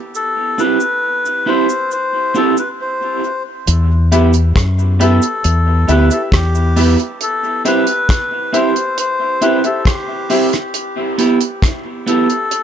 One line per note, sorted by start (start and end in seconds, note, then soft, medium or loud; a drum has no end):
0.15 0.60 A4 loud
0.15 cabasa medium
0.58 0.77 C4 medium
0.58 0.78 E4 medium
0.58 0.78 G4 medium
0.58 1.50 B4 loud
0.58 cabasa medium
0.80 cabasa medium
1.25 cabasa soft
1.46 1.66 C4 medium
1.46 1.66 E4 medium
1.46 1.66 G4 medium
1.46 1.91 C5 loud
1.69 cabasa medium
1.91 2.37 C5 loud
1.91 cabasa medium
2.34 2.54 C4 medium
2.34 2.54 E4 medium
2.34 2.55 G4 medium
2.34 2.56 A4 medium
2.34 cabasa soft
2.57 2.69 B4 medium
2.57 muted clean electric guitar stroke soft
2.57 cabasa medium
2.81 3.43 C5 medium
3.67 4.52 E2 loud
3.67 closed hi-hat loud
3.67 cabasa medium
4.12 4.31 B3 medium
4.12 4.27 E4 medium
4.12 4.31 E4 medium
4.12 4.27 G4 medium
4.12 4.31 G4 medium
4.12 4.28 B4 medium
4.12 4.28 E5 medium
4.12 closed hi-hat medium
4.12 cabasa medium
4.33 closed hi-hat medium
4.33 cabasa medium
4.56 5.18 F#2 medium
4.56 kick loud
4.56 cross-stick loud
4.56 closed hi-hat loud
4.79 cabasa soft
5.00 5.19 B3 medium
5.00 5.15 E4 medium
5.00 5.19 E4 medium
5.00 5.16 G4 medium
5.00 5.20 G4 loud
5.00 5.92 A4 medium
5.00 5.16 B4 medium
5.00 5.16 E5 loud
5.00 closed hi-hat medium
5.22 closed hi-hat medium
5.22 cabasa medium
5.44 5.85 E2 loud
5.44 closed hi-hat loud
5.44 cabasa medium
5.88 6.09 D2 medium
5.88 6.07 B3 medium
5.88 6.04 E4 medium
5.88 6.08 E4 medium
5.88 6.04 G4 medium
5.88 6.08 G4 medium
5.88 6.04 B4 medium
5.88 6.12 B4 loud
5.88 6.04 E5 loud
5.88 closed hi-hat medium
5.88 cabasa soft
6.10 6.26 E4 medium
6.10 6.26 G4 medium
6.10 6.22 A4 medium
6.10 6.26 B4 medium
6.10 6.27 E5 medium
6.10 muted clean electric guitar stroke soft
6.10 closed hi-hat medium
6.10 cabasa medium
6.32 6.95 E2 loud
6.32 6.96 G4 loud
6.32 kick loud
6.32 cross-stick loud
6.32 closed hi-hat medium
6.55 cabasa medium
6.76 6.96 B3 medium
6.76 6.92 E4 medium
6.76 6.96 E4 loud
6.76 6.92 G4 medium
6.76 6.96 G4 loud
6.76 6.92 B4 medium
6.76 6.93 E5 medium
6.76 open hi-hat medium
6.76 cabasa medium
7.00 closed hi-hat medium
7.21 7.63 A4 loud
7.21 closed hi-hat medium
7.65 7.84 C4 medium
7.65 7.80 E4 medium
7.65 7.85 E4 medium
7.65 7.81 G4 medium
7.65 7.85 G4 medium
7.65 8.57 B4 loud
7.65 7.81 C5 medium
7.65 7.81 E5 loud
7.65 closed hi-hat medium
7.87 closed hi-hat medium
8.09 kick loud
8.09 cross-stick loud
8.09 closed hi-hat loud
8.53 8.72 C4 medium
8.53 8.69 E4 medium
8.53 8.73 E4 medium
8.53 8.69 G4 medium
8.53 8.73 G4 medium
8.53 8.69 C5 medium
8.53 8.98 C5 loud
8.53 8.69 E5 loud
8.53 closed hi-hat medium
8.76 closed hi-hat medium
8.98 9.44 C5 loud
8.98 closed hi-hat loud
9.41 9.61 C4 medium
9.41 9.57 E4 medium
9.41 9.61 E4 medium
9.41 9.57 G4 medium
9.41 9.61 G4 medium
9.41 9.65 B4 medium
9.41 9.58 C5 medium
9.41 9.58 E5 medium
9.41 closed hi-hat medium
9.64 9.79 E4 medium
9.64 9.80 G4 medium
9.64 9.85 A4 medium
9.64 9.80 C5 medium
9.64 9.80 E5 medium
9.64 muted clean electric guitar stroke soft
9.64 closed hi-hat medium
9.85 10.49 G4 medium
9.85 kick loud
9.85 cross-stick loud
9.85 closed hi-hat medium
10.30 10.49 C4 loud
10.30 10.46 E4 medium
10.30 10.50 E4 loud
10.30 10.46 G4 medium
10.30 10.50 G4 loud
10.30 10.46 C5 medium
10.30 10.46 E5 medium
10.30 open hi-hat medium
10.53 cross-stick medium
10.53 closed hi-hat medium
10.74 closed hi-hat loud
11.18 11.37 B3 medium
11.18 11.38 E4 medium
11.18 11.38 G4 medium
11.18 closed hi-hat medium
11.41 closed hi-hat medium
11.62 kick loud
11.62 cross-stick loud
11.62 closed hi-hat loud
12.06 12.26 B3 loud
12.06 12.26 E4 medium
12.06 12.26 G4 medium
12.06 12.63 A4 loud
12.06 closed hi-hat medium
12.30 closed hi-hat medium
12.51 closed hi-hat loud